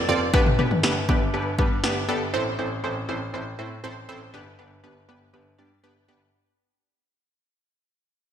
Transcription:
0.09 F1 C4 F4 A4 D5
0.34 G1 B3 D4 G4 B4, kick
0.46 mid tom
0.59 G1 B3 D4 G4 B4, mid tom
0.71 mid tom
0.83 G1 B3 D4 G4 B4, snare
1.09 G1 B3 D4 G4 B4, kick
1.34 G1 B3 D4 G4 B4
1.59 G2 B3 D4 G4 B4, kick
1.84 G1 B3 D4 G4 B4, snare
2.08 G1 B3 D4 G4 A4
2.34 A1 C4 E4 A4 C5
2.59 A1 C4 E4 A4 C5
2.84 A1 C4 E4 A4 C5
3.09 A1 C4 E4 A4 C5
3.33 A1 C4 E4 A4 C5
3.58 A2 C4 E4 A4 C5
3.84 A1 C4 E4 A4 C5
4.09 A1 C4 E4 A4 C5
4.34 G1 B3 D4 G4 B4
4.59 G1 B3 D4 G4 B4
4.84 G1 B3 D4 G4 B4
5.09 G1 B3 D4 G4 B4
5.33 G1 B3 D4 G4 B4
5.58 G2 B3 D4 G4 D5
5.83 G1 B3 D4 G4 B4
6.08 G1 B3 D4 G4 B4

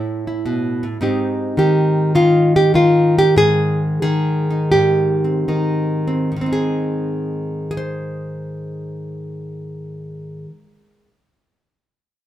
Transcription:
Already playing: A2 E4 C#5
0.27 E4
0.46 B2
0.83 A2
1.01 G#2 C4 D#4 G4
1.57 D#3 G4
2.15 D#3 F4
2.56 G4
2.74 D#3 F4
3.19 G4
3.36 G#2 G#4
4.02 D#3 G#4
4.51 D#4
4.72 G#2 G4
5.24 C4
5.48 D#3 D#4
6.08 C4
6.32 G#2
6.36 D#3
6.41 C4
6.46 D#4
6.53 G#4
7.71 G#4
7.77 C5

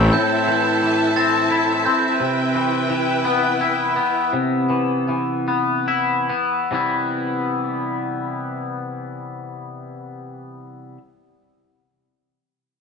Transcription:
Already playing: E3 C4 E4 A4 E5 G5 G6
0.13 A2 A5 G6
0.48 E3 G6
0.83 E3
1.16 C4 A6
1.51 E4
1.85 C4 G6
2.20 C3 E4 B4 G5
2.55 E3
2.90 E3
3.25 B3
3.61 E4
3.96 B3
4.33 C3
4.70 E3
5.09 E3
5.48 B3
5.88 E4
6.29 B3
6.71 C3 E3 G3 B3 E4

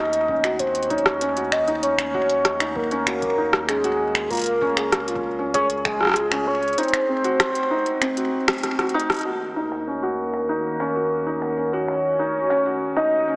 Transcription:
Already playing: D#2 C#4 D#4 F#4 D#5
0.13 closed hi-hat
0.28 C#4, kick
0.44 F#4, finger snap, closed hi-hat
0.59 C5, kick, closed hi-hat
0.75 closed hi-hat
0.83 closed hi-hat
0.90 D#4 C#5, kick, closed hi-hat
0.98 closed hi-hat
1.06 cross-stick
1.21 C#4, closed hi-hat
1.37 F#4, closed hi-hat
1.52 D#5, finger snap
1.68 D#4, closed hi-hat
1.83 C#5, closed hi-hat
1.99 C#4, finger snap, closed hi-hat
2.14 F#4, kick
2.29 closed hi-hat
2.45 cross-stick, closed hi-hat
2.60 D#4, finger snap, closed hi-hat
2.76 A#4, kick
2.91 C#4, closed hi-hat
3.07 F#4, finger snap, closed hi-hat
3.22 kick, closed hi-hat
3.38 D#4
3.53 cross-stick
3.68 C#4 G#4, finger snap, closed hi-hat
3.84 F#4, closed hi-hat
4.15 finger snap, closed hi-hat
4.30 C#2 F4 A#4, kick, closed hi-hat
4.33 closed hi-hat
4.35 closed hi-hat
4.37 closed hi-hat
4.39 closed hi-hat
4.42 closed hi-hat
4.44 closed hi-hat
4.46 closed hi-hat
4.61 C#4, kick
4.77 G#4, finger snap, closed hi-hat
4.92 cross-stick, closed hi-hat
5.08 F4, closed hi-hat
5.16 kick
5.39 C#4
5.54 G#4 C#5, kick, closed hi-hat
5.70 closed hi-hat
5.85 G#4, finger snap, kick
6.01 F4, cross-stick
6.03 cross-stick
6.05 cross-stick
6.07 cross-stick
6.09 cross-stick
6.12 cross-stick
6.14 cross-stick, closed hi-hat
6.31 C#4, finger snap
6.47 G#4 C#5
6.63 closed hi-hat
6.68 closed hi-hat
6.73 closed hi-hat
6.78 D#4 C5, closed hi-hat
6.83 closed hi-hat
6.88 closed hi-hat
6.94 finger snap, closed hi-hat
7.09 C4
7.24 F#4, closed hi-hat
7.40 finger snap, cross-stick, closed hi-hat
7.55 closed hi-hat
7.71 D#4
7.86 closed hi-hat
8.02 C4, finger snap, closed hi-hat
8.17 F#4, closed hi-hat
8.48 C4, finger snap, cross-stick, closed hi-hat
8.53 closed hi-hat
8.58 closed hi-hat
8.63 cross-stick, closed hi-hat
8.79 F#4, cross-stick, closed hi-hat
8.89 closed hi-hat
8.94 D#4
9.00 closed hi-hat
9.10 cross-stick, closed hi-hat
9.12 closed hi-hat
9.14 closed hi-hat
9.17 closed hi-hat
9.19 closed hi-hat
9.21 closed hi-hat
9.23 D#2 D#3 C#4 F#4 A#4, finger snap, closed hi-hat
9.41 closed hi-hat
9.56 D#4
9.72 finger snap
9.87 C#4, closed hi-hat
10.03 F#4
10.34 finger snap, closed hi-hat
10.41 closed hi-hat
10.45 closed hi-hat
10.49 D#4, closed hi-hat
10.57 closed hi-hat
10.61 closed hi-hat
10.65 closed hi-hat
10.80 C#4, finger snap
10.96 F#4
11.03 closed hi-hat
11.26 D#4, closed hi-hat
11.42 finger snap
11.57 C#4, closed hi-hat
11.73 F#4 C#5, closed hi-hat
11.88 finger snap, closed hi-hat
12.19 D#4
12.27 closed hi-hat
12.35 closed hi-hat
12.50 C#4, finger snap, closed hi-hat
12.66 F#4
12.81 closed hi-hat
12.96 D#4 D#5, finger snap, closed hi-hat
13.12 closed hi-hat
13.28 C#4

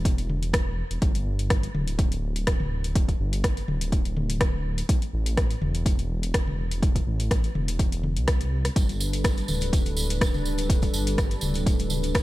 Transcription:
Already playing: E1
0.05 kick, closed hi-hat
0.18 closed hi-hat
0.30 mid tom
0.43 closed hi-hat
0.54 kick, cross-stick, closed hi-hat
0.91 E1, closed hi-hat
1.02 G1, kick, closed hi-hat
1.15 closed hi-hat
1.39 closed hi-hat
1.50 kick, cross-stick, closed hi-hat
1.63 closed hi-hat
1.74 D1, mid tom
1.88 closed hi-hat
1.99 kick, closed hi-hat
2.12 closed hi-hat
2.36 closed hi-hat
2.47 kick, cross-stick, closed hi-hat
2.60 mid tom
2.84 closed hi-hat
2.95 kick, closed hi-hat
3.08 kick, closed hi-hat
3.20 G1
3.33 closed hi-hat
3.44 kick, cross-stick, closed hi-hat
3.57 closed hi-hat
3.68 D1, mid tom
3.81 closed hi-hat
3.92 kick, closed hi-hat
4.05 closed hi-hat
4.17 mid tom
4.30 closed hi-hat
4.41 kick, cross-stick, closed hi-hat
4.78 closed hi-hat
4.89 kick, closed hi-hat
5.02 closed hi-hat
5.13 A1
5.26 closed hi-hat
5.37 kick, cross-stick, closed hi-hat
5.51 closed hi-hat
5.61 E1, mid tom
5.75 closed hi-hat
5.86 kick, closed hi-hat
5.99 closed hi-hat
6.23 closed hi-hat
6.34 kick, cross-stick, closed hi-hat
6.47 mid tom
6.71 closed hi-hat
6.83 kick, closed hi-hat
6.96 kick, closed hi-hat
7.07 A1
7.20 closed hi-hat
7.31 kick, cross-stick, closed hi-hat
7.44 closed hi-hat
7.55 E1, mid tom
7.68 closed hi-hat
7.79 E1, kick, closed hi-hat
7.92 closed hi-hat
8.04 mid tom
8.17 C2, closed hi-hat
8.28 kick, cross-stick, closed hi-hat
8.41 closed hi-hat
8.65 cross-stick, closed hi-hat
8.76 G1 G3 D4 A4 B4, kick, closed hi-hat, tambourine
8.89 closed hi-hat, tambourine
9.00 tambourine
9.13 closed hi-hat, tambourine
9.24 kick, cross-stick, closed hi-hat, tambourine
9.37 closed hi-hat, tambourine
9.48 D1, mid tom, tambourine
9.61 closed hi-hat, tambourine
9.73 kick, closed hi-hat, tambourine
9.86 closed hi-hat, tambourine
9.97 tambourine
10.10 closed hi-hat, tambourine
10.21 kick, cross-stick, closed hi-hat, tambourine
10.34 mid tom, tambourine
10.45 tambourine
10.58 closed hi-hat, tambourine
10.70 kick, closed hi-hat, tambourine
10.82 kick, closed hi-hat, tambourine
10.94 G1, tambourine
11.07 closed hi-hat, tambourine
11.18 kick, cross-stick, closed hi-hat, tambourine
11.31 closed hi-hat, tambourine
11.41 D1, mid tom, tambourine
11.54 closed hi-hat, tambourine
11.66 kick, closed hi-hat, tambourine
11.79 closed hi-hat, tambourine
11.90 mid tom, tambourine
12.03 closed hi-hat, tambourine
12.15 kick, cross-stick, closed hi-hat, tambourine

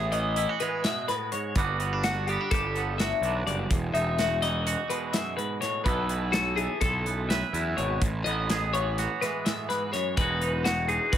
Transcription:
Already playing: A1 A2 E3 B3 G#4 E5
0.12 E3 B3 D#5, closed hi-hat
0.36 E4, closed hi-hat
0.49 F#4
0.60 E3 G#3 B4, closed hi-hat
0.84 B2 E5, snare, closed hi-hat
1.08 A2 B4, snare, closed hi-hat
1.32 G#2 C#5, closed hi-hat
1.55 G1 G2 G3 B3 D4 F#4 B4, kick, closed hi-hat
1.80 B3, closed hi-hat
1.93 D4
2.03 F#4, snare, closed hi-hat
2.27 G3 B3 G4, closed hi-hat
2.41 D4
2.51 G1 G4 A4, kick, snare, closed hi-hat
2.76 D3 B3, closed hi-hat
2.98 F#4 E5, snare, closed hi-hat
3.21 B1 D4, closed hi-hat
3.45 F#1 G2 D5, closed hi-hat
3.70 E1 E2, kick, closed hi-hat
3.94 E1 D#4 E5, closed hi-hat
4.18 F#4, snare, closed hi-hat
4.42 E3 D#4 D#5, snare, closed hi-hat
4.67 F#4, closed hi-hat
4.90 B2 G#3 B4, closed hi-hat
5.13 F#2 E5, snare, closed hi-hat
5.37 G#2 B4, closed hi-hat
5.61 A2 C#5, snare, closed hi-hat
5.84 B1 B2 E3 B3 E4 B4, kick, closed hi-hat
5.88 A4
6.09 E4, closed hi-hat
6.32 F#4 A4, snare, closed hi-hat
6.56 E3 E4 G#4, closed hi-hat
6.81 B1 A4, kick, closed hi-hat
7.06 F#2 B3, closed hi-hat
7.29 B4 E5, snare, closed hi-hat
7.53 E2 E4, closed hi-hat
7.77 G#1 B2 C#5, closed hi-hat
8.02 A1 A2, kick, closed hi-hat
8.24 A1 B3 D#5, closed hi-hat
8.50 G#4, snare, closed hi-hat
8.73 E3 B3 C#5, closed hi-hat
8.98 F#4, snare, closed hi-hat
9.21 E3 G#3 B4, snare, closed hi-hat
9.45 A2 E5, snare, closed hi-hat
9.69 G#2 B4, snare, closed hi-hat
9.93 F#2 C#5, snare, closed hi-hat
10.17 E1 E2 E3 G#3 D#4 B4, kick, closed hi-hat
10.21 F#4
10.42 D#4, closed hi-hat
10.65 F#4, snare, closed hi-hat
10.88 E3 D#4 G#4, closed hi-hat
11.12 E1 F#4 B4, kick, closed hi-hat

